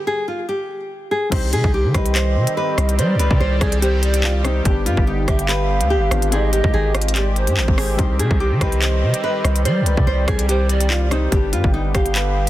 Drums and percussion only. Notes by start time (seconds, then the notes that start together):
1.32 kick, closed hi-hat, crash
1.53 closed hi-hat
1.64 kick
1.94 kick, cross-stick, closed hi-hat
2.06 closed hi-hat
2.15 clap, closed hi-hat
2.47 closed hi-hat
2.78 cross-stick, closed hi-hat
2.89 closed hi-hat
2.99 closed hi-hat
3.19 closed hi-hat
3.31 kick
3.61 kick, cross-stick, closed hi-hat
3.72 closed hi-hat
3.82 closed hi-hat
4.03 closed hi-hat
4.14 closed hi-hat
4.24 clap
4.45 cross-stick, closed hi-hat
4.65 kick, closed hi-hat
4.86 closed hi-hat
4.97 kick
5.28 kick, cross-stick, closed hi-hat
5.39 closed hi-hat
5.49 clap, closed hi-hat
5.81 closed hi-hat
6.11 cross-stick, closed hi-hat
6.22 closed hi-hat
6.32 closed hi-hat
6.53 closed hi-hat
6.64 kick
6.95 cross-stick, closed hi-hat
7.01 closed hi-hat
7.08 closed hi-hat
7.15 clap, closed hi-hat
7.36 closed hi-hat
7.47 closed hi-hat
7.57 clap
7.68 kick
7.78 cross-stick, open hi-hat
7.99 kick, closed hi-hat
8.19 closed hi-hat
8.31 kick
8.61 kick, cross-stick, closed hi-hat
8.72 closed hi-hat
8.82 clap, closed hi-hat
9.14 closed hi-hat
9.44 cross-stick, closed hi-hat
9.56 closed hi-hat
9.65 closed hi-hat
9.86 closed hi-hat
9.97 kick
10.28 kick, cross-stick, closed hi-hat
10.39 closed hi-hat
10.49 closed hi-hat
10.69 closed hi-hat
10.80 closed hi-hat
10.90 clap
11.11 cross-stick, closed hi-hat
11.32 kick, closed hi-hat
11.53 closed hi-hat
11.64 kick
11.95 kick, cross-stick, closed hi-hat
12.06 closed hi-hat
12.15 clap, closed hi-hat